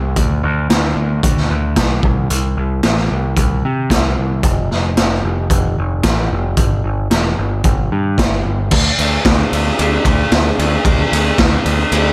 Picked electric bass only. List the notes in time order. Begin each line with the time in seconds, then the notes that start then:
Already playing: C2
0.17 D2
0.43 D2
0.70 D2
0.96 D2
1.23 D2
1.50 D2
1.76 B1
2.03 C2
2.30 C2
2.57 C2
2.84 A1
3.11 C2
3.37 C2
3.65 C3
3.91 C2
4.18 C2
4.43 F1
4.71 F1
4.98 F1
5.24 F1
5.50 F1
5.79 F1
6.04 A1
6.31 F1
6.58 G1
6.84 G1
7.10 E1
7.38 G1
7.64 G1
7.92 G2
8.18 G1
8.45 G1
8.72 D2
8.99 D2
9.25 D2
9.52 D2
9.79 D2
10.05 D2
10.32 D2
10.58 D2
10.85 D2
11.12 D2
11.39 D2
11.65 D2
11.92 D2